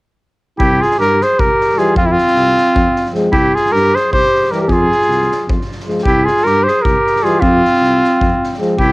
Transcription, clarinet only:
0.58 E4
0.81 F4
0.98 G4
1.21 G#4
1.38 G4
1.78 F4
1.96 C4
2.03 C4
2.10 C4
3.32 E4
3.55 F4
3.72 G4
3.95 G#4
4.14 G4
4.54 G4
4.63 G4
4.72 F4
6.06 E4
6.26 F4
6.47 G4
6.68 G#4
6.84 G4
7.24 F4
7.42 C4
8.77 E4

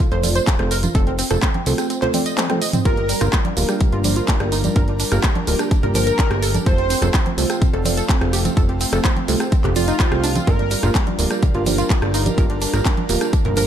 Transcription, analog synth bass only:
0.12 F1
0.59 F1
0.95 F1
1.31 F1
1.66 C2
2.85 G1
3.21 G1
3.57 D1
3.93 G1
4.40 G1
4.76 G1
5.12 G1
5.47 D1
5.83 G1
6.31 G1
6.66 F1
7.02 F1
7.38 C2
7.74 F1
8.21 F1
8.57 F1
8.93 F1
9.28 C2
9.64 F1
10.12 C2
10.47 G1
10.83 G1
11.19 D1
11.55 G1
12.02 G1
12.38 G1
12.74 G1
13.09 D1
13.45 G1

